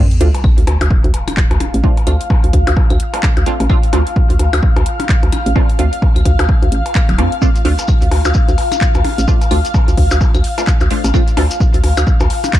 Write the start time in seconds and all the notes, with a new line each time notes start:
Already playing: sub drop
0.08 F5, closed hi-hat
0.21 D2 A3 C4 D4 F4, closed hi-hat
0.35 closed hi-hat, percussion blips
0.44 kick, claves
0.58 D2, closed hi-hat
0.67 D2, closed hi-hat, percussion blips
0.81 D2, closed hi-hat, percussion blips
0.90 kick
1.04 D2, closed hi-hat
1.14 closed hi-hat, percussion blips
1.28 closed hi-hat, percussion blips, claves
1.37 kick, clap
1.51 D2, closed hi-hat, percussion blips
1.60 closed hi-hat, percussion blips
1.74 A1, closed hi-hat
1.84 A3 C4 D4 F4, kick
1.97 closed hi-hat, percussion blips
2.07 D2 A3 C4 D4 F4, closed hi-hat, claves
2.21 closed hi-hat
2.30 kick, percussion blips
2.44 D2, closed hi-hat
2.53 D2, kick, closed hi-hat
2.67 D2, closed hi-hat, percussion blips
2.77 kick, percussion blips
2.90 D2, closed hi-hat, claves
3.00 closed hi-hat
3.14 A3 C4 D4 F4, closed hi-hat, percussion blips
3.23 kick, clap
3.37 D2, closed hi-hat, percussion blips
3.46 A3 C4 D4 F4, closed hi-hat
3.60 A1, closed hi-hat, percussion blips
3.70 A3 C4 D4 F4, kick, claves
3.83 closed hi-hat
3.93 D2 A3 C4 D4 F4, closed hi-hat, percussion blips
4.07 closed hi-hat
4.16 kick
4.30 D2, closed hi-hat
4.39 D2, closed hi-hat, percussion blips
4.53 D2, closed hi-hat, claves, percussion blips
4.63 kick
4.76 D2, closed hi-hat, percussion blips
4.86 closed hi-hat
5.00 closed hi-hat, percussion blips
5.09 kick, clap
5.23 D2, closed hi-hat, percussion blips
5.32 closed hi-hat, percussion blips, claves
5.46 A1, closed hi-hat
5.56 A3 C4 D4 F4, kick, percussion blips
5.70 closed hi-hat
5.79 D2 A3 C4 D4 F4, closed hi-hat
5.93 closed hi-hat
6.02 kick, percussion blips
6.16 D2, closed hi-hat, claves
6.25 D2, kick, closed hi-hat
6.39 D2, closed hi-hat, percussion blips
6.49 kick
6.62 D2, closed hi-hat
6.72 A1, closed hi-hat
6.86 closed hi-hat, percussion blips
6.95 kick, clap, claves
7.09 D1, closed hi-hat, percussion blips
7.18 F2 A3 C4 D4 F4, closed hi-hat, percussion blips
7.32 closed hi-hat
7.42 A3 C4 D4 F4, kick, shekere
7.56 closed hi-hat, shekere
7.65 D2 A3 C4 D4 F4, open hi-hat
7.79 closed hi-hat, percussion blips, shekere
7.88 kick, claves, shekere
8.01 D2, closed hi-hat, shekere
8.11 D2, open hi-hat, percussion blips
8.25 D2, closed hi-hat, percussion blips, shekere
8.34 kick, shekere
8.49 D2, closed hi-hat, shekere
8.58 open hi-hat, percussion blips
8.72 closed hi-hat, percussion blips, claves, shekere
8.81 kick, clap, shekere
8.94 D2, closed hi-hat, percussion blips, shekere
9.04 open hi-hat, percussion blips
9.18 A1, closed hi-hat, shekere
9.28 A3 C4 D4 F4, kick, shekere
9.41 closed hi-hat, percussion blips, shekere
9.51 D2 A3 C4 D4 F4, open hi-hat, claves
9.65 closed hi-hat, shekere
9.74 kick, percussion blips, shekere
9.88 D2, closed hi-hat, shekere
9.97 D2, kick, open hi-hat
10.11 D2, closed hi-hat, percussion blips, shekere
10.21 kick, percussion blips, shekere
10.34 D2, closed hi-hat, claves, shekere
10.44 open hi-hat
10.58 A3 C4 D4 F4, closed hi-hat, percussion blips, shekere
10.67 kick, clap, shekere
10.80 D2, closed hi-hat, percussion blips, shekere
10.91 A3 C4 D4 F4, open hi-hat
11.04 A1, closed hi-hat, percussion blips, shekere
11.14 A3 C4 D4 F4, kick, claves, shekere
11.27 closed hi-hat, shekere
11.37 D2 A3 C4 D4 F4, open hi-hat, percussion blips
11.51 closed hi-hat, shekere
11.60 kick, shekere
11.74 D2, closed hi-hat, shekere
11.84 D2, open hi-hat, percussion blips
11.97 D2, closed hi-hat, claves, percussion blips, shekere
12.07 kick, shekere
12.20 D2, closed hi-hat, percussion blips, shekere
12.30 open hi-hat
12.44 closed hi-hat, percussion blips, shekere
12.53 kick, clap, shekere